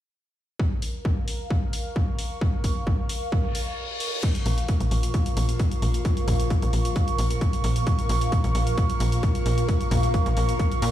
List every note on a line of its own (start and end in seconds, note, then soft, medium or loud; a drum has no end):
0.59 10.91 A#4 medium
0.59 kick loud
0.82 open hi-hat medium
0.92 10.91 F5 medium
1.05 kick loud
1.28 open hi-hat loud
1.50 kick loud
1.71 10.91 C#6 medium
1.71 open hi-hat loud
1.96 kick loud
2.19 open hi-hat loud
2.41 kick loud
2.64 kick medium
2.64 open hi-hat loud
2.87 kick loud
3.09 open hi-hat loud
3.32 kick loud
3.32 reverse cymbal medium
3.55 open hi-hat loud
4.00 open hi-hat loud
4.23 10.91 A#2 medium
4.23 10.91 F3 medium
4.23 kick loud
4.23 closed hi-hat medium
4.23 crash loud
4.35 closed hi-hat medium
4.46 4.63 A#1 medium
4.46 open hi-hat loud
4.58 closed hi-hat medium
4.68 kick loud
4.68 closed hi-hat medium
4.80 4.89 A#1 medium
4.80 closed hi-hat medium
4.91 5.09 A#1 medium
4.91 open hi-hat medium
5.03 closed hi-hat medium
5.14 kick loud
5.14 closed hi-hat medium
5.26 closed hi-hat medium
5.37 5.54 A#1 loud
5.37 open hi-hat loud
5.49 closed hi-hat medium
5.59 kick loud
5.59 closed hi-hat medium
5.71 closed hi-hat medium
5.82 6.00 A#1 medium
5.82 open hi-hat medium
5.94 closed hi-hat medium
6.05 kick loud
6.05 closed hi-hat medium
6.17 closed hi-hat medium
6.28 6.45 A#1 loud
6.28 kick medium
6.28 open hi-hat loud
6.40 closed hi-hat medium
6.50 kick loud
6.50 closed hi-hat medium
6.62 6.71 A#1 medium
6.62 closed hi-hat medium
6.73 6.91 A#1 medium
6.73 open hi-hat loud
6.85 closed hi-hat medium
6.96 kick loud
6.96 closed hi-hat medium
7.08 closed hi-hat medium
7.18 7.36 A#1 medium
7.18 open hi-hat loud
7.30 closed hi-hat medium
7.41 kick loud
7.41 closed hi-hat medium
7.53 closed hi-hat medium
7.64 7.82 A#1 medium
7.64 open hi-hat medium
7.76 closed hi-hat medium
7.87 kick loud
7.87 closed hi-hat medium
7.99 closed hi-hat medium
8.09 8.27 A#1 medium
8.09 open hi-hat loud
8.21 closed hi-hat medium
8.32 kick loud
8.32 closed hi-hat medium
8.44 8.52 A#1 medium
8.44 closed hi-hat medium
8.55 8.72 A#1 medium
8.55 open hi-hat loud
8.67 closed hi-hat medium
8.78 kick loud
8.78 closed hi-hat medium
8.90 closed hi-hat medium
9.00 9.18 A#1 medium
9.00 open hi-hat loud
9.12 closed hi-hat medium
9.23 kick loud
9.23 closed hi-hat medium
9.35 closed hi-hat medium
9.46 9.63 A#1 medium
9.46 open hi-hat medium
9.58 closed hi-hat medium
9.69 kick loud
9.69 closed hi-hat medium
9.81 closed hi-hat medium
9.91 10.09 A#1 loud
9.91 kick medium
9.91 open hi-hat loud
10.03 closed hi-hat medium
10.14 kick loud
10.14 closed hi-hat medium
10.26 10.34 A#1 medium
10.26 closed hi-hat medium
10.37 10.54 A#1 medium
10.37 open hi-hat loud
10.49 closed hi-hat medium
10.59 kick loud
10.59 closed hi-hat medium
10.72 closed hi-hat medium
10.82 10.91 A#2 medium
10.82 open hi-hat loud